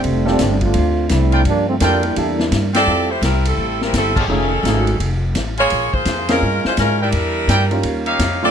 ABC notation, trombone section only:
X:1
M:4/4
L:1/8
Q:"Swing" 1/4=169
K:F
V:1 name="Trombone section"
[D,G,A,C] [G,A,CD]2 [A,CDF]3 [A,CDE]2 | [F,G,B,D] [D,F,A,C] [F,G,B,D] [G,B,DE]4 z | z8 | z8 |
z8 | z8 |]